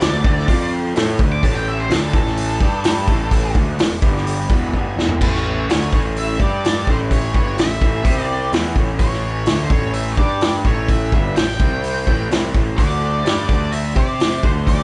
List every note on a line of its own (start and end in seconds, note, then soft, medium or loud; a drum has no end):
0.00 0.23 D2 medium
0.00 0.20 D3 medium
0.00 0.20 A3 medium
0.00 0.33 E4 medium
0.00 0.33 F#4 medium
0.00 0.34 C5 loud
0.00 0.69 D5 loud
0.00 snare loud
0.00 open hi-hat medium
0.24 0.46 D2 loud
0.24 0.47 D3 medium
0.24 0.48 A3 loud
0.24 0.48 D4 medium
0.24 kick loud
0.39 snare soft
0.45 0.92 F2 medium
0.45 0.95 F3 medium
0.45 0.65 C4 medium
0.45 0.66 F4 medium
0.45 0.66 C5 medium
0.45 kick loud
0.49 0.95 C4 medium
0.49 0.95 F4 loud
0.49 open hi-hat medium
0.69 0.92 C4 medium
0.69 0.95 F4 medium
0.69 0.95 C5 medium
0.94 1.18 A2 medium
0.94 1.18 A3 medium
0.94 1.13 C4 loud
0.94 1.14 E4 medium
0.94 1.19 E4 medium
0.94 1.14 F#4 loud
0.94 1.19 A4 loud
0.94 snare loud
0.94 open hi-hat medium
1.17 1.41 D2 medium
1.17 1.42 D3 medium
1.17 1.42 A3 loud
1.17 1.34 C4 medium
1.17 1.43 D4 loud
1.17 1.35 E4 medium
1.17 1.35 F#4 medium
1.17 kick loud
1.32 1.43 D6 medium
1.42 1.87 A1 medium
1.42 1.89 A2 medium
1.42 1.90 E3 medium
1.42 1.89 A3 loud
1.42 2.06 B3 medium
1.42 2.06 C#4 medium
1.42 2.06 G4 medium
1.42 1.55 A5 medium
1.42 kick loud
1.42 open hi-hat medium
1.55 1.66 G5 medium
1.68 1.79 E5 medium
1.80 1.92 C5 medium
1.89 2.12 D2 medium
1.89 2.13 D3 medium
1.89 2.13 A3 loud
1.89 2.14 D4 loud
1.89 2.14 A4 loud
1.89 snare loud
1.89 open hi-hat medium
2.13 2.58 A1 loud
2.13 2.61 A2 medium
2.13 2.60 E3 medium
2.13 2.61 A3 medium
2.13 3.53 A4 loud
2.13 kick loud
2.27 snare soft
2.37 open hi-hat medium
2.59 3.05 G2 medium
2.59 2.98 G3 medium
2.59 3.07 G3 medium
2.59 2.99 D4 medium
2.59 3.08 D4 medium
2.59 2.99 G4 medium
2.59 3.08 G4 loud
2.59 kick loud
2.84 snare loud
2.84 open hi-hat medium
3.07 3.52 A1 medium
3.07 3.55 A2 medium
3.07 3.55 E3 loud
3.07 3.54 A3 loud
3.07 3.46 B3 medium
3.07 3.47 C#4 medium
3.07 3.47 G4 loud
3.07 kick loud
3.31 kick loud
3.31 open hi-hat medium
3.53 3.77 D2 loud
3.53 3.78 D3 loud
3.53 3.92 G#3 medium
3.53 3.79 A3 loud
3.53 3.93 D4 loud
3.53 3.79 D4 loud
3.53 3.93 F#4 loud
3.53 kick loud
3.78 4.01 E1 medium
3.78 3.98 E2 medium
3.78 3.98 B2 medium
3.78 snare loud
3.78 open hi-hat medium
4.00 4.47 G1 medium
4.00 4.49 G2 medium
4.00 4.50 D3 loud
4.00 4.39 G3 medium
4.00 4.50 G3 loud
4.00 4.40 D4 medium
4.00 4.40 G4 loud
4.00 kick loud
4.17 snare soft
4.27 open hi-hat medium
4.50 4.72 E1 medium
4.50 4.73 E2 medium
4.50 4.74 B2 loud
4.50 4.74 E3 medium
4.50 4.88 G#3 medium
4.50 4.89 D4 medium
4.50 4.89 F#4 loud
4.50 4.73 B5 medium
4.50 kick loud
4.74 4.96 G1 medium
4.74 4.97 G2 medium
4.74 4.97 D3 loud
4.74 4.98 G3 medium
4.74 4.96 G#5 medium
4.74 kick medium
4.96 5.19 E1 medium
4.96 5.21 E2 medium
4.96 5.21 B2 loud
4.96 5.21 E3 loud
4.96 5.13 G#3 medium
4.96 5.13 D4 medium
4.96 5.14 F#4 medium
4.96 5.20 E5 medium
4.96 snare medium
5.09 floor tom loud
5.21 5.65 A1 medium
5.21 5.68 A2 medium
5.21 5.69 E3 medium
5.21 5.69 A3 loud
5.21 5.85 C#4 medium
5.21 5.85 G4 medium
5.21 5.86 B4 medium
5.21 5.69 C#5 medium
5.21 kick medium
5.21 crash loud
5.35 snare soft
5.69 5.91 D2 medium
5.69 5.92 D3 medium
5.69 5.92 A3 loud
5.69 5.92 D4 loud
5.69 5.93 C#5 medium
5.69 snare loud
5.69 open hi-hat medium
5.93 6.37 A1 medium
5.93 6.39 A2 medium
5.93 6.39 E3 medium
5.93 6.40 A3 medium
5.93 6.00 C#5 medium
5.93 kick loud
6.16 6.39 E5 loud
6.16 open hi-hat medium
6.39 6.84 G2 medium
6.39 6.86 G3 medium
6.39 6.78 D4 medium
6.39 6.87 D4 medium
6.39 6.78 G4 medium
6.39 6.87 G4 loud
6.39 6.79 D5 medium
6.39 6.85 D5 medium
6.39 kick loud
6.64 snare loud
6.64 open hi-hat medium
6.87 7.31 A1 medium
6.87 7.34 A2 medium
6.87 7.34 E3 medium
6.87 7.34 A3 medium
6.87 7.63 C#4 medium
6.87 7.63 G4 medium
6.87 7.63 B4 medium
6.87 6.96 C5 medium
6.87 kick loud
7.11 7.34 C#5 medium
7.11 kick loud
7.11 open hi-hat medium
7.34 7.57 G1 medium
7.34 7.57 G2 medium
7.34 7.57 D3 loud
7.34 7.57 G3 loud
7.34 7.57 C#5 medium
7.34 kick loud
7.57 7.81 A1 medium
7.57 7.77 A2 medium
7.57 7.77 E3 medium
7.57 8.23 E5 medium
7.57 snare loud
7.57 open hi-hat medium
7.81 8.04 A1 medium
7.81 8.05 A2 medium
7.81 8.05 E3 medium
7.81 8.06 A3 medium
7.81 kick loud
8.05 8.49 C2 medium
8.05 8.52 C3 medium
8.05 8.52 G3 medium
8.05 8.52 C4 medium
8.05 8.25 C4 medium
8.05 8.25 G4 medium
8.05 8.25 C5 medium
8.05 kick loud
8.05 open hi-hat medium
8.23 8.49 D5 medium
8.30 8.53 C4 medium
8.30 8.53 G4 medium
8.30 8.54 C5 medium
8.52 8.75 E2 medium
8.52 8.75 E3 medium
8.52 8.76 B3 medium
8.52 8.72 C#4 medium
8.52 8.76 E4 loud
8.52 8.72 G4 medium
8.52 8.72 B4 loud
8.52 snare loud
8.52 open hi-hat soft
8.74 8.98 A1 medium
8.74 8.99 A2 medium
8.74 8.99 E3 medium
8.74 9.00 A3 medium
8.74 8.91 C#4 medium
8.74 8.92 G4 medium
8.74 8.92 C#5 medium
8.74 kick loud
8.99 9.44 A1 medium
8.99 9.46 A2 medium
8.99 9.47 E3 medium
8.99 9.46 A3 loud
8.99 9.62 C#4 medium
8.99 9.63 G4 medium
8.99 9.63 B4 medium
8.99 9.61 C#5 medium
8.99 kick loud
8.99 open hi-hat soft
9.13 snare soft
9.46 9.69 D2 medium
9.46 9.70 D3 medium
9.46 9.70 A3 medium
9.46 9.71 D4 medium
9.46 snare loud
9.46 open hi-hat medium
9.64 9.70 C5 medium
9.70 10.15 A1 medium
9.70 10.17 A2 medium
9.70 10.17 E3 medium
9.70 10.18 A3 medium
9.70 9.93 C#5 medium
9.70 kick loud
9.93 10.12 E5 medium
9.93 open hi-hat medium
10.12 10.17 C#5 medium
10.17 10.62 G2 medium
10.17 10.65 G3 medium
10.17 10.65 D4 medium
10.17 10.56 D4 medium
10.17 10.56 G4 medium
10.17 10.65 G4 medium
10.17 10.42 D5 medium
10.17 10.57 D5 medium
10.17 kick loud
10.41 10.49 D5 medium
10.41 snare loud
10.41 open hi-hat medium
10.65 11.09 A1 medium
10.65 11.12 A2 medium
10.65 11.12 E3 medium
10.65 11.12 A3 loud
10.65 11.41 C#4 medium
10.65 11.41 G4 medium
10.65 11.42 B4 medium
10.65 10.90 C#5 medium
10.65 kick loud
10.88 11.13 E5 medium
10.88 kick loud
10.88 open hi-hat soft
11.12 11.35 G1 medium
11.12 11.36 G2 loud
11.12 11.36 D3 loud
11.12 11.36 G3 loud
11.12 11.36 E5 medium
11.12 kick loud
11.36 11.59 A1 medium
11.36 11.55 A2 medium
11.36 11.55 E3 medium
11.36 12.27 G5 medium
11.36 snare loud
11.36 open hi-hat medium
11.59 12.04 C2 medium
11.59 12.07 C3 medium
11.59 12.07 G3 medium
11.59 11.97 C4 medium
11.59 12.07 C4 medium
11.59 11.98 G4 medium
11.59 11.98 C5 medium
11.59 kick loud
11.83 open hi-hat medium
12.07 12.29 A1 medium
12.07 12.31 A2 medium
12.07 12.31 E3 loud
12.07 12.31 A3 medium
12.07 12.46 C#4 medium
12.07 12.46 G4 medium
12.07 12.46 B4 medium
12.07 kick loud
12.31 12.53 C2 medium
12.31 12.54 C3 medium
12.31 12.54 G3 medium
12.31 12.54 C4 medium
12.31 snare loud
12.31 open hi-hat medium
12.54 12.77 A1 medium
12.54 12.77 A2 medium
12.54 12.78 E3 medium
12.54 12.78 A3 medium
12.54 12.70 C#4 medium
12.54 12.70 G4 medium
12.54 12.71 B4 medium
12.54 kick loud
12.78 13.22 D2 medium
12.78 13.25 D3 medium
12.78 13.25 A3 medium
12.78 13.24 D4 medium
12.78 13.41 E4 medium
12.78 13.41 F#4 medium
12.78 13.41 C5 medium
12.78 13.45 D5 medium
12.78 kick loud
12.78 open hi-hat soft
13.25 13.47 G2 medium
13.25 13.48 G3 medium
13.25 13.48 D4 medium
13.25 13.49 G4 medium
13.25 snare loud
13.25 open hi-hat medium
13.48 13.93 D2 medium
13.48 13.95 D3 medium
13.48 13.94 A3 medium
13.48 13.95 D4 medium
13.48 13.73 D5 medium
13.48 kick loud
13.72 13.94 E5 loud
13.72 open hi-hat medium
13.95 14.41 C3 medium
13.95 14.42 C4 medium
13.95 14.34 C4 medium
13.95 14.42 G4 medium
13.95 14.35 G4 medium
13.95 14.43 C5 loud
13.95 14.35 C5 medium
13.95 14.44 D5 loud
13.95 kick loud
14.20 snare loud
14.20 open hi-hat medium
14.43 14.83 D2 medium
14.43 14.83 D3 medium
14.43 14.83 A3 medium
14.43 14.83 D4 medium
14.43 14.83 E4 medium
14.43 14.83 F#4 medium
14.43 14.51 C5 medium
14.43 14.83 C5 medium
14.43 kick loud
14.67 14.83 D5 loud
14.67 kick medium
14.67 open hi-hat medium